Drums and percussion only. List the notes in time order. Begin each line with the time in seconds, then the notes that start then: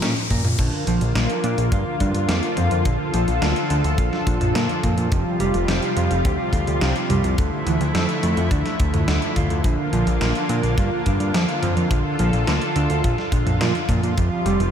0.02 snare, closed hi-hat, mid tom
0.16 closed hi-hat
0.31 kick, closed hi-hat, mid tom
0.45 closed hi-hat, mid tom
0.59 kick, closed hi-hat, crash
0.87 closed hi-hat
1.01 closed hi-hat
1.15 snare, closed hi-hat
1.30 closed hi-hat
1.44 closed hi-hat
1.58 closed hi-hat
1.72 kick, closed hi-hat
2.00 kick, closed hi-hat
2.15 closed hi-hat
2.29 snare, closed hi-hat
2.43 closed hi-hat
2.57 closed hi-hat, mid tom
2.71 closed hi-hat
2.85 kick, closed hi-hat
3.14 closed hi-hat
3.28 closed hi-hat
3.42 snare, closed hi-hat
3.56 closed hi-hat
3.70 closed hi-hat
3.84 closed hi-hat
3.98 kick, closed hi-hat
4.13 snare
4.27 kick, closed hi-hat
4.41 closed hi-hat, mid tom
4.55 snare, closed hi-hat
4.69 closed hi-hat
4.83 kick, closed hi-hat, mid tom
4.98 closed hi-hat
5.12 kick, closed hi-hat
5.40 closed hi-hat
5.54 closed hi-hat
5.68 snare, closed hi-hat
5.82 closed hi-hat
5.97 closed hi-hat
6.11 closed hi-hat
6.25 kick, closed hi-hat
6.53 kick, closed hi-hat
6.67 closed hi-hat
6.81 snare, closed hi-hat
6.96 closed hi-hat
7.10 closed hi-hat, mid tom
7.24 closed hi-hat
7.38 kick, closed hi-hat
7.67 closed hi-hat
7.81 closed hi-hat
7.95 snare, closed hi-hat
8.09 closed hi-hat
8.23 closed hi-hat
8.37 closed hi-hat
8.51 kick, closed hi-hat
8.66 snare, closed hi-hat
8.80 kick, closed hi-hat
8.94 closed hi-hat, mid tom
9.08 snare, closed hi-hat
9.22 closed hi-hat
9.36 kick, closed hi-hat, mid tom
9.50 closed hi-hat
9.64 kick, closed hi-hat
9.93 closed hi-hat
10.07 closed hi-hat
10.21 snare, closed hi-hat
10.35 closed hi-hat
10.49 closed hi-hat
10.63 closed hi-hat
10.78 kick, closed hi-hat
11.06 kick, closed hi-hat
11.20 closed hi-hat
11.34 snare, closed hi-hat
11.49 closed hi-hat
11.63 closed hi-hat, mid tom
11.77 closed hi-hat
11.91 kick, closed hi-hat
12.19 closed hi-hat
12.33 closed hi-hat
12.47 snare, closed hi-hat
12.62 closed hi-hat
12.76 closed hi-hat
12.90 closed hi-hat
13.04 kick, closed hi-hat
13.18 snare
13.32 kick, closed hi-hat
13.47 closed hi-hat, mid tom
13.61 snare, closed hi-hat
13.75 closed hi-hat
13.89 kick, closed hi-hat, mid tom
14.03 closed hi-hat
14.18 kick, closed hi-hat
14.46 closed hi-hat
14.60 closed hi-hat